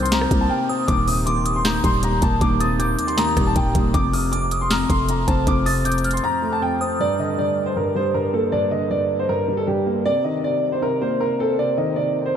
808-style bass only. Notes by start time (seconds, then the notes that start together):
Already playing: C2
0.31 C2
0.88 D#1
1.84 D#1
2.22 D#1
2.41 D#1
3.37 D#1
3.56 D#1
3.75 D#1
3.94 F1
4.90 F1
5.28 F1
5.47 F1